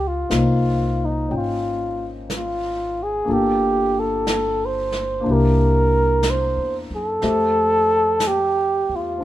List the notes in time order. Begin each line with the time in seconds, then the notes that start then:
Already playing: C#2
0.07 F4
0.29 C2 A#3 C4 D#4 F4, brush sweep, snare, hi-hat pedal
1.05 D#4
1.29 G#1 C#4 F4 G5, brush sweep
1.38 F4
2.30 brush sweep, snare, hi-hat pedal
2.36 F4
3.03 G#4
3.25 G1 A#3 D4 F4, brush sweep
3.30 G4 A4
3.99 A4
4.27 brush sweep, snare, hi-hat pedal
4.66 C5
4.92 snare
5.20 A#3 D4
5.25 C2 E4, brush sweep
5.31 G4 A#4
6.23 brush sweep, snare, hi-hat pedal
6.30 C5
6.57 E2
6.91 F#2
6.96 A4
7.22 F2 A3 C4 G4 E5, brush sweep, snare
8.20 brush sweep, snare, hi-hat pedal
8.27 G4
8.89 E2
8.96 F4
9.18 C4 D4, brush sweep